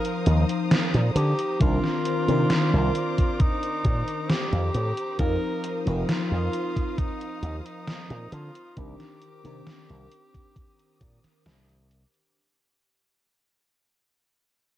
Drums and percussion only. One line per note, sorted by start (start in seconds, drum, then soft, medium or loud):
0.05 closed hi-hat soft
0.26 closed hi-hat medium
0.50 closed hi-hat medium
0.71 snare loud
0.71 closed hi-hat medium
0.94 closed hi-hat soft
1.16 closed hi-hat medium
1.39 closed hi-hat soft
1.61 kick loud
1.61 closed hi-hat medium
1.84 snare soft
2.05 closed hi-hat medium
2.29 closed hi-hat medium
2.50 snare loud
2.50 closed hi-hat medium
2.95 closed hi-hat medium
3.18 kick medium
3.18 closed hi-hat soft
3.40 kick loud
3.40 closed hi-hat medium
3.63 closed hi-hat soft
3.85 kick loud
3.85 closed hi-hat medium
4.08 closed hi-hat soft
4.29 snare loud
4.29 closed hi-hat medium
4.53 closed hi-hat soft
4.74 closed hi-hat medium
4.97 closed hi-hat medium
5.19 kick loud
5.19 closed hi-hat medium
5.64 closed hi-hat medium
5.87 closed hi-hat medium
6.09 snare loud
6.09 closed hi-hat medium
6.53 closed hi-hat medium
6.76 kick medium
6.76 closed hi-hat medium
6.98 kick loud
6.98 closed hi-hat medium
7.21 closed hi-hat soft
7.43 closed hi-hat medium
7.66 closed hi-hat medium
7.88 snare loud
7.88 closed hi-hat medium
8.10 closed hi-hat soft
8.32 closed hi-hat medium
8.55 closed hi-hat medium
8.77 kick loud
8.77 closed hi-hat medium
9.00 snare soft
9.00 closed hi-hat soft
9.22 closed hi-hat medium
9.45 closed hi-hat medium
9.67 snare loud
9.67 closed hi-hat medium
9.90 closed hi-hat soft
10.12 closed hi-hat medium
10.34 kick medium
10.34 closed hi-hat medium
10.56 kick loud
10.56 closed hi-hat medium
10.79 closed hi-hat soft
11.01 kick loud
11.01 closed hi-hat medium
11.24 snare soft
11.24 closed hi-hat medium
11.46 snare loud
11.46 closed hi-hat medium
11.69 closed hi-hat soft
11.91 closed hi-hat medium
12.14 closed hi-hat medium